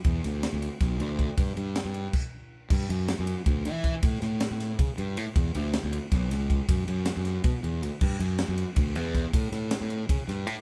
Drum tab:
CC |-------|----x--|x------|-------|
RD |xxxxxxx|xxxx---|-xxxxxx|xxxxxxx|
SD |-oo-o--|--o----|--o---o|-ooo---|
BD |o---o-o|o---o--|o---o-o|o---o--|

CC |-------|-------|x------|-------|
RD |xxxxxxx|xxxxxxx|-xxxxxx|xxxxxxx|
SD |--o-oo-|--oo---|--o-o-o|-oo--o-|
BD |o---o-o|o---o--|o---o-o|o---o--|